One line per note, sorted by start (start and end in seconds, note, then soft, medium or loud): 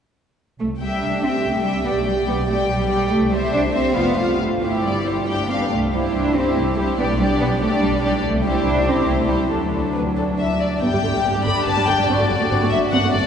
0.59 0.97 C2 soft
0.59 0.68 A3 medium
0.80 1.02 G3 soft
0.80 1.23 G4 soft
0.80 1.22 E5 soft
0.80 1.21 G5 soft
1.02 1.39 C2 soft
1.02 1.23 D4 medium
1.23 1.44 C4 soft
1.23 1.65 G4 soft
1.23 1.64 E5 soft
1.23 1.63 G5 soft
1.43 1.81 C2 soft
1.43 1.64 A3 medium
1.64 1.86 G3 medium
1.64 1.84 G4 soft
1.64 1.86 E5 soft
1.64 1.85 G5 soft
1.85 2.23 B1 soft
1.85 1.89 B3 medium
1.85 2.06 G4 soft
1.85 2.06 D5 soft
1.85 2.05 G5 soft
1.97 2.01 A3 soft
2.06 2.15 G3 soft
2.06 2.48 G4 soft
2.06 2.48 D5 soft
2.06 2.48 G5 soft
2.27 2.64 B1 soft
2.27 2.35 B3 medium
2.47 2.68 A3 medium
2.47 2.90 G4 soft
2.47 2.89 D5 soft
2.47 2.89 G5 soft
2.68 3.06 B1 soft
2.68 3.09 G3 medium
2.90 3.11 G4 soft
2.90 3.10 D5 soft
2.90 3.10 G5 soft
3.10 3.47 C2 medium
3.10 3.31 A3 medium
3.31 3.52 G3 medium
3.31 3.73 G4 soft
3.31 3.73 C5 soft
3.31 3.72 E5 soft
3.52 3.90 C2 medium
3.52 3.60 D4 medium
3.73 3.94 C4 medium
3.73 3.95 G4 soft
3.73 3.93 C5 soft
3.73 3.95 E5 soft
3.94 4.33 F1 soft
3.94 4.17 B3 medium
3.94 4.17 F4 soft
3.94 4.16 C5 soft
3.94 4.16 F5 soft
4.16 4.37 A3 medium
4.16 4.39 F4 soft
4.16 4.39 C5 soft
4.16 4.39 F5 soft
4.38 4.78 G1 soft
4.38 4.82 A3 medium
4.61 5.04 E4 soft
4.61 5.03 G4 soft
4.61 4.79 C5 soft
4.83 5.22 G1 soft
4.83 5.38 G3 medium
4.83 5.04 D5 soft
5.05 5.27 E4 soft
5.05 5.26 G4 soft
5.05 5.28 C5 soft
5.26 5.66 G1 soft
5.26 5.49 D4 soft
5.26 5.50 G4 soft
5.26 5.49 G5 medium
5.40 5.50 A3 soft
5.49 5.60 C4 medium
5.49 5.72 D4 soft
5.49 5.72 G4 soft
5.49 5.71 F5 soft
5.60 5.71 B3 soft
5.70 6.10 C2 soft
5.70 5.92 A3 medium
5.92 6.14 G3 soft
5.92 6.36 E4 soft
5.92 6.36 G4 soft
5.92 6.35 C5 soft
6.13 6.52 C2 soft
6.13 6.35 D4 medium
6.35 6.57 C4 medium
6.35 6.78 E4 soft
6.35 6.77 G4 soft
6.35 6.77 C5 soft
6.55 6.94 C2 soft
6.55 6.77 A3 medium
6.77 6.98 G3 medium
6.77 6.99 E4 soft
6.77 6.98 G4 soft
6.77 6.99 C5 soft
6.98 7.35 B1 medium
6.98 7.02 B3 medium
6.98 7.19 D4 soft
6.98 7.20 G4 soft
6.98 7.20 D5 soft
7.10 7.20 A3 medium
7.19 7.27 G3 medium
7.19 7.61 D4 soft
7.19 7.59 G4 soft
7.19 7.61 D5 soft
7.40 7.77 B1 medium
7.40 7.48 B3 medium
7.61 7.82 A3 medium
7.61 8.02 D4 soft
7.61 8.01 G4 soft
7.61 8.02 D5 soft
7.82 8.18 B1 medium
7.82 8.23 G3 medium
8.02 8.23 D4 soft
8.02 8.22 G4 soft
8.02 8.23 D5 soft
8.23 8.59 C2 medium
8.23 8.43 A3 medium
8.43 8.64 G3 medium
8.43 8.84 E4 soft
8.43 8.84 G4 soft
8.43 8.84 C5 soft
8.64 9.01 C2 medium
8.64 8.85 D4 medium
8.85 9.06 C4 medium
8.85 9.27 E4 soft
8.85 9.27 G4 soft
8.85 9.27 C5 soft
9.05 9.44 C2 soft
9.05 9.27 A3 medium
9.26 9.49 G3 medium
9.26 9.49 E4 soft
9.26 9.49 G4 soft
9.26 9.49 C5 soft
9.48 9.89 D2 soft
9.48 10.58 F#3 soft
9.48 9.70 D4 soft
9.48 9.69 D4 soft
9.48 9.72 A4 soft
9.71 10.15 D4 soft
9.71 9.90 A4 soft
9.92 10.32 D2 soft
9.92 10.01 B4 soft
10.16 10.59 D4 soft
10.16 10.24 A4 soft
10.38 10.77 D2 soft
10.38 10.60 E5 soft
10.60 10.81 D4 soft
10.60 10.82 D4 soft
10.60 10.82 D5 soft
10.81 10.86 G1 medium
10.81 10.86 G2 soft
10.81 10.86 B3 soft
10.81 13.27 D4 soft
10.81 12.05 G4 soft
10.81 13.27 D5 soft
10.81 11.42 G5 medium
10.92 10.97 G2 soft
10.92 10.97 G3 soft
11.03 11.07 G1 soft
11.03 11.08 G2 soft
11.03 11.08 D3 soft
11.13 11.17 G2 soft
11.13 11.18 G3 soft
11.24 11.28 G1 soft
11.24 11.28 G2 soft
11.24 11.29 B3 soft
11.34 11.39 G2 soft
11.34 11.40 G3 soft
11.45 11.50 G1 soft
11.45 11.50 G2 soft
11.45 11.50 D3 soft
11.45 11.66 B5 medium
11.66 11.71 G1 soft
11.66 11.71 G2 medium
11.66 11.71 B3 soft
11.66 11.87 A5 medium
11.77 11.81 G2 soft
11.77 11.81 G3 soft
11.87 11.92 G1 soft
11.87 11.92 G2 soft
11.87 11.91 D3 soft
11.87 12.08 G5 medium
11.98 12.02 G2 soft
11.98 12.03 G3 soft
12.06 12.12 G1 soft
12.06 12.12 G2 medium
12.06 12.13 C4 soft
12.06 13.27 F#4 soft
12.06 12.70 D5 medium
12.20 12.24 G2 soft
12.20 12.24 A3 soft
12.30 12.34 G1 soft
12.30 12.34 G2 soft
12.30 12.34 F#3 soft
12.40 12.44 G2 soft
12.40 12.45 A3 soft
12.50 12.55 G1 medium
12.50 12.55 G2 medium
12.50 12.55 C4 soft
12.61 12.65 G2 soft
12.61 12.66 A3 soft
12.70 12.76 G1 soft
12.70 12.75 G2 soft
12.70 12.77 F#3 soft
12.70 12.78 E5 medium
12.91 12.97 G1 soft
12.91 12.96 G2 medium
12.91 12.98 C4 medium
12.91 13.13 F#5 medium
13.03 13.07 G2 soft
13.03 13.07 A3 soft
13.13 13.18 G1 soft
13.13 13.17 G2 soft
13.13 13.18 F#3 soft
13.13 13.27 D5 medium
13.23 13.27 G2 soft